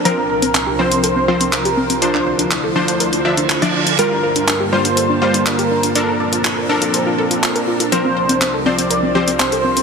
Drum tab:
HH |x--xx--xx--xxx-x|x--xx--xxx-xxx-x|x--xx--xx--xxx-x|x--xx--xx--xxx-x|
CP |----x-------x---|-x--x-------x---|----x-------x---|----x-------x---|

HH |x--xx--xx--xxx-x|
CP |----x-------x---|